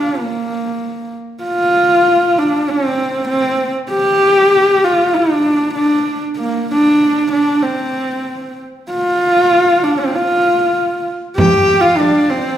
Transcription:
0, 0, Header, 1, 4, 480
1, 0, Start_track
1, 0, Tempo, 621118
1, 1112, Time_signature, 4, 2, 24, 8
1, 9720, End_track
2, 0, Start_track
2, 0, Title_t, "Dizi"
2, 0, Program_c, 0, 73
2, 8797, Note_on_c, 0, 79, 98
2, 9158, Note_on_c, 0, 77, 83
2, 9170, Note_off_c, 0, 79, 0
2, 9269, Note_on_c, 0, 74, 77
2, 9281, Note_off_c, 0, 77, 0
2, 9500, Note_on_c, 0, 72, 64
2, 9511, Note_off_c, 0, 74, 0
2, 9720, Note_off_c, 0, 72, 0
2, 9720, End_track
3, 0, Start_track
3, 0, Title_t, "Horsehead fiddle"
3, 0, Program_c, 1, 110
3, 0, Note_on_c, 1, 62, 72
3, 155, Note_on_c, 1, 58, 65
3, 167, Note_off_c, 1, 62, 0
3, 874, Note_off_c, 1, 58, 0
3, 1111, Note_on_c, 1, 65, 84
3, 1839, Note_on_c, 1, 62, 72
3, 1850, Note_off_c, 1, 65, 0
3, 2086, Note_on_c, 1, 60, 79
3, 2097, Note_off_c, 1, 62, 0
3, 2536, Note_off_c, 1, 60, 0
3, 2540, Note_on_c, 1, 60, 83
3, 2883, Note_off_c, 1, 60, 0
3, 3016, Note_on_c, 1, 67, 97
3, 3743, Note_on_c, 1, 65, 84
3, 3754, Note_off_c, 1, 67, 0
3, 3985, Note_on_c, 1, 62, 89
3, 3997, Note_off_c, 1, 65, 0
3, 4437, Note_off_c, 1, 62, 0
3, 4442, Note_on_c, 1, 62, 84
3, 4793, Note_off_c, 1, 62, 0
3, 4925, Note_on_c, 1, 58, 80
3, 5163, Note_off_c, 1, 58, 0
3, 5183, Note_on_c, 1, 62, 88
3, 5640, Note_off_c, 1, 62, 0
3, 5658, Note_on_c, 1, 62, 80
3, 5891, Note_on_c, 1, 60, 77
3, 5903, Note_off_c, 1, 62, 0
3, 6625, Note_off_c, 1, 60, 0
3, 6884, Note_on_c, 1, 65, 93
3, 7602, Note_on_c, 1, 62, 77
3, 7614, Note_off_c, 1, 65, 0
3, 7722, Note_on_c, 1, 60, 72
3, 7734, Note_off_c, 1, 62, 0
3, 7842, Note_on_c, 1, 65, 81
3, 7854, Note_off_c, 1, 60, 0
3, 8559, Note_off_c, 1, 65, 0
3, 8785, Note_on_c, 1, 67, 97
3, 9126, Note_on_c, 1, 65, 91
3, 9138, Note_off_c, 1, 67, 0
3, 9252, Note_on_c, 1, 62, 84
3, 9264, Note_off_c, 1, 65, 0
3, 9505, Note_on_c, 1, 60, 82
3, 9516, Note_off_c, 1, 62, 0
3, 9720, Note_off_c, 1, 60, 0
3, 9720, End_track
4, 0, Start_track
4, 0, Title_t, "Frame drum"
4, 8794, Note_on_c, 9, 64, 73
4, 8871, Note_off_c, 9, 64, 0
4, 9158, Note_on_c, 9, 64, 22
4, 9235, Note_off_c, 9, 64, 0
4, 9274, Note_on_c, 9, 64, 56
4, 9351, Note_off_c, 9, 64, 0
4, 9720, End_track
0, 0, End_of_file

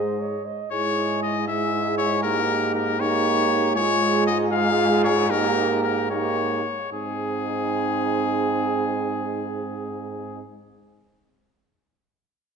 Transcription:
0, 0, Header, 1, 6, 480
1, 0, Start_track
1, 0, Key_signature, -4, "major"
1, 0, Tempo, 511945
1, 670, Time_signature, 6, 3, 24, 8
1, 4971, Tempo, 541516
1, 11398, End_track
2, 0, Start_track
2, 0, Title_t, "Trumpet"
2, 0, Program_c, 0, 56
2, 0, Note_on_c, 0, 75, 80
2, 400, Note_off_c, 0, 75, 0
2, 669, Note_on_c, 0, 73, 116
2, 1117, Note_off_c, 0, 73, 0
2, 1149, Note_on_c, 0, 75, 100
2, 1381, Note_off_c, 0, 75, 0
2, 1387, Note_on_c, 0, 76, 100
2, 1850, Note_off_c, 0, 76, 0
2, 1856, Note_on_c, 0, 73, 120
2, 2084, Note_off_c, 0, 73, 0
2, 2090, Note_on_c, 0, 70, 118
2, 2558, Note_off_c, 0, 70, 0
2, 2571, Note_on_c, 0, 70, 108
2, 2814, Note_on_c, 0, 73, 127
2, 2828, Note_off_c, 0, 70, 0
2, 3516, Note_off_c, 0, 73, 0
2, 3522, Note_on_c, 0, 73, 127
2, 3989, Note_off_c, 0, 73, 0
2, 4002, Note_on_c, 0, 75, 114
2, 4109, Note_off_c, 0, 75, 0
2, 4239, Note_on_c, 0, 77, 127
2, 4716, Note_off_c, 0, 77, 0
2, 4725, Note_on_c, 0, 73, 122
2, 4970, Note_on_c, 0, 70, 126
2, 4984, Note_off_c, 0, 73, 0
2, 5435, Note_off_c, 0, 70, 0
2, 5440, Note_on_c, 0, 70, 96
2, 5675, Note_off_c, 0, 70, 0
2, 5682, Note_on_c, 0, 73, 105
2, 6398, Note_off_c, 0, 73, 0
2, 6410, Note_on_c, 0, 68, 103
2, 9489, Note_off_c, 0, 68, 0
2, 11398, End_track
3, 0, Start_track
3, 0, Title_t, "Flugelhorn"
3, 0, Program_c, 1, 56
3, 0, Note_on_c, 1, 72, 72
3, 180, Note_on_c, 1, 73, 78
3, 194, Note_off_c, 1, 72, 0
3, 425, Note_on_c, 1, 75, 77
3, 439, Note_off_c, 1, 73, 0
3, 664, Note_off_c, 1, 75, 0
3, 669, Note_on_c, 1, 68, 81
3, 1352, Note_off_c, 1, 68, 0
3, 1391, Note_on_c, 1, 68, 78
3, 2102, Note_on_c, 1, 67, 95
3, 2116, Note_off_c, 1, 68, 0
3, 2805, Note_off_c, 1, 67, 0
3, 2811, Note_on_c, 1, 67, 99
3, 3528, Note_on_c, 1, 68, 109
3, 3542, Note_off_c, 1, 67, 0
3, 4078, Note_off_c, 1, 68, 0
3, 4238, Note_on_c, 1, 68, 96
3, 4956, Note_off_c, 1, 68, 0
3, 4964, Note_on_c, 1, 67, 99
3, 5663, Note_off_c, 1, 67, 0
3, 5681, Note_on_c, 1, 67, 79
3, 6158, Note_off_c, 1, 67, 0
3, 6411, Note_on_c, 1, 68, 93
3, 9490, Note_off_c, 1, 68, 0
3, 11398, End_track
4, 0, Start_track
4, 0, Title_t, "French horn"
4, 0, Program_c, 2, 60
4, 0, Note_on_c, 2, 56, 86
4, 426, Note_off_c, 2, 56, 0
4, 673, Note_on_c, 2, 64, 77
4, 1354, Note_off_c, 2, 64, 0
4, 1393, Note_on_c, 2, 64, 76
4, 2104, Note_on_c, 2, 63, 83
4, 2119, Note_off_c, 2, 64, 0
4, 2805, Note_off_c, 2, 63, 0
4, 2811, Note_on_c, 2, 63, 94
4, 3523, Note_on_c, 2, 65, 92
4, 3537, Note_off_c, 2, 63, 0
4, 4236, Note_off_c, 2, 65, 0
4, 4241, Note_on_c, 2, 65, 97
4, 4975, Note_on_c, 2, 63, 84
4, 4988, Note_off_c, 2, 65, 0
4, 5676, Note_off_c, 2, 63, 0
4, 5682, Note_on_c, 2, 63, 81
4, 6158, Note_off_c, 2, 63, 0
4, 6414, Note_on_c, 2, 63, 80
4, 9493, Note_off_c, 2, 63, 0
4, 11398, End_track
5, 0, Start_track
5, 0, Title_t, "Euphonium"
5, 0, Program_c, 3, 58
5, 0, Note_on_c, 3, 56, 75
5, 427, Note_off_c, 3, 56, 0
5, 675, Note_on_c, 3, 56, 77
5, 1355, Note_off_c, 3, 56, 0
5, 1395, Note_on_c, 3, 56, 84
5, 2105, Note_on_c, 3, 58, 83
5, 2119, Note_off_c, 3, 56, 0
5, 2804, Note_off_c, 3, 58, 0
5, 2809, Note_on_c, 3, 58, 96
5, 3521, Note_on_c, 3, 56, 102
5, 3535, Note_off_c, 3, 58, 0
5, 4236, Note_off_c, 3, 56, 0
5, 4242, Note_on_c, 3, 56, 97
5, 4957, Note_off_c, 3, 56, 0
5, 4971, Note_on_c, 3, 58, 96
5, 5667, Note_off_c, 3, 58, 0
5, 5688, Note_on_c, 3, 58, 83
5, 6161, Note_off_c, 3, 58, 0
5, 6420, Note_on_c, 3, 60, 86
5, 9499, Note_off_c, 3, 60, 0
5, 11398, End_track
6, 0, Start_track
6, 0, Title_t, "Bass trombone"
6, 0, Program_c, 4, 57
6, 0, Note_on_c, 4, 44, 79
6, 423, Note_off_c, 4, 44, 0
6, 670, Note_on_c, 4, 44, 84
6, 3484, Note_off_c, 4, 44, 0
6, 3519, Note_on_c, 4, 44, 109
6, 6131, Note_off_c, 4, 44, 0
6, 6413, Note_on_c, 4, 44, 81
6, 9492, Note_off_c, 4, 44, 0
6, 11398, End_track
0, 0, End_of_file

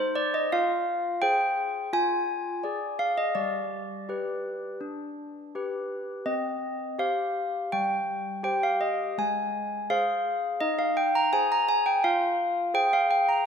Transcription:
0, 0, Header, 1, 2, 480
1, 0, Start_track
1, 0, Key_signature, -3, "minor"
1, 0, Tempo, 708383
1, 342, Time_signature, 4, 2, 24, 8
1, 2261, Tempo, 729927
1, 6101, Tempo, 712589
1, 8987, End_track
2, 0, Start_track
2, 0, Title_t, "Handbells"
2, 0, Program_c, 0, 14
2, 0, Note_on_c, 0, 63, 60
2, 0, Note_on_c, 0, 72, 107
2, 101, Note_off_c, 0, 72, 0
2, 105, Note_on_c, 0, 74, 112
2, 224, Note_off_c, 0, 74, 0
2, 232, Note_on_c, 0, 75, 108
2, 315, Note_off_c, 0, 63, 0
2, 347, Note_off_c, 0, 75, 0
2, 355, Note_on_c, 0, 77, 115
2, 357, Note_on_c, 0, 65, 75
2, 808, Note_off_c, 0, 77, 0
2, 813, Note_off_c, 0, 65, 0
2, 824, Note_on_c, 0, 79, 127
2, 830, Note_on_c, 0, 68, 65
2, 830, Note_on_c, 0, 72, 72
2, 1275, Note_off_c, 0, 68, 0
2, 1275, Note_off_c, 0, 72, 0
2, 1280, Note_off_c, 0, 79, 0
2, 1307, Note_on_c, 0, 65, 85
2, 1311, Note_on_c, 0, 80, 127
2, 1767, Note_off_c, 0, 65, 0
2, 1786, Note_on_c, 0, 74, 62
2, 1792, Note_on_c, 0, 68, 55
2, 1996, Note_off_c, 0, 80, 0
2, 2027, Note_on_c, 0, 77, 102
2, 2143, Note_off_c, 0, 77, 0
2, 2152, Note_on_c, 0, 75, 95
2, 2238, Note_off_c, 0, 74, 0
2, 2241, Note_off_c, 0, 68, 0
2, 2267, Note_off_c, 0, 75, 0
2, 2269, Note_on_c, 0, 55, 58
2, 2269, Note_on_c, 0, 74, 85
2, 2733, Note_off_c, 0, 55, 0
2, 2755, Note_on_c, 0, 67, 47
2, 2759, Note_on_c, 0, 71, 51
2, 3207, Note_off_c, 0, 67, 0
2, 3209, Note_off_c, 0, 71, 0
2, 3227, Note_on_c, 0, 62, 50
2, 3689, Note_off_c, 0, 74, 0
2, 3697, Note_off_c, 0, 62, 0
2, 3718, Note_on_c, 0, 67, 46
2, 3720, Note_on_c, 0, 71, 49
2, 4169, Note_off_c, 0, 67, 0
2, 4170, Note_off_c, 0, 71, 0
2, 4181, Note_on_c, 0, 60, 56
2, 4182, Note_on_c, 0, 75, 91
2, 4646, Note_off_c, 0, 75, 0
2, 4651, Note_off_c, 0, 60, 0
2, 4661, Note_on_c, 0, 67, 49
2, 4665, Note_on_c, 0, 77, 99
2, 4666, Note_on_c, 0, 72, 54
2, 5112, Note_off_c, 0, 67, 0
2, 5115, Note_off_c, 0, 72, 0
2, 5122, Note_off_c, 0, 77, 0
2, 5146, Note_on_c, 0, 79, 100
2, 5149, Note_on_c, 0, 55, 59
2, 5597, Note_off_c, 0, 79, 0
2, 5603, Note_off_c, 0, 55, 0
2, 5613, Note_on_c, 0, 67, 52
2, 5617, Note_on_c, 0, 79, 104
2, 5621, Note_on_c, 0, 72, 55
2, 5736, Note_off_c, 0, 79, 0
2, 5744, Note_on_c, 0, 77, 93
2, 5858, Note_on_c, 0, 75, 89
2, 5861, Note_off_c, 0, 77, 0
2, 6071, Note_off_c, 0, 67, 0
2, 6075, Note_off_c, 0, 72, 0
2, 6089, Note_off_c, 0, 75, 0
2, 6103, Note_on_c, 0, 56, 66
2, 6108, Note_on_c, 0, 80, 104
2, 6567, Note_off_c, 0, 80, 0
2, 6570, Note_off_c, 0, 56, 0
2, 6588, Note_on_c, 0, 68, 61
2, 6589, Note_on_c, 0, 77, 115
2, 6593, Note_on_c, 0, 72, 65
2, 7044, Note_off_c, 0, 68, 0
2, 7047, Note_off_c, 0, 72, 0
2, 7052, Note_off_c, 0, 77, 0
2, 7064, Note_on_c, 0, 75, 109
2, 7066, Note_on_c, 0, 63, 64
2, 7186, Note_off_c, 0, 75, 0
2, 7186, Note_on_c, 0, 77, 99
2, 7307, Note_off_c, 0, 77, 0
2, 7309, Note_on_c, 0, 79, 113
2, 7427, Note_off_c, 0, 79, 0
2, 7433, Note_on_c, 0, 82, 118
2, 7530, Note_off_c, 0, 63, 0
2, 7548, Note_off_c, 0, 82, 0
2, 7550, Note_on_c, 0, 80, 118
2, 7551, Note_on_c, 0, 68, 53
2, 7555, Note_on_c, 0, 72, 63
2, 7666, Note_off_c, 0, 80, 0
2, 7678, Note_on_c, 0, 82, 114
2, 7789, Note_off_c, 0, 82, 0
2, 7791, Note_on_c, 0, 80, 118
2, 7905, Note_off_c, 0, 80, 0
2, 7909, Note_on_c, 0, 79, 102
2, 7994, Note_off_c, 0, 68, 0
2, 7996, Note_off_c, 0, 72, 0
2, 8023, Note_off_c, 0, 79, 0
2, 8030, Note_on_c, 0, 77, 108
2, 8032, Note_on_c, 0, 65, 70
2, 8480, Note_off_c, 0, 77, 0
2, 8486, Note_off_c, 0, 65, 0
2, 8502, Note_on_c, 0, 68, 61
2, 8504, Note_on_c, 0, 72, 59
2, 8506, Note_on_c, 0, 79, 123
2, 8620, Note_off_c, 0, 79, 0
2, 8631, Note_on_c, 0, 77, 106
2, 8742, Note_off_c, 0, 77, 0
2, 8748, Note_on_c, 0, 79, 101
2, 8862, Note_off_c, 0, 79, 0
2, 8869, Note_on_c, 0, 82, 93
2, 8954, Note_off_c, 0, 68, 0
2, 8955, Note_off_c, 0, 72, 0
2, 8983, Note_off_c, 0, 82, 0
2, 8987, End_track
0, 0, End_of_file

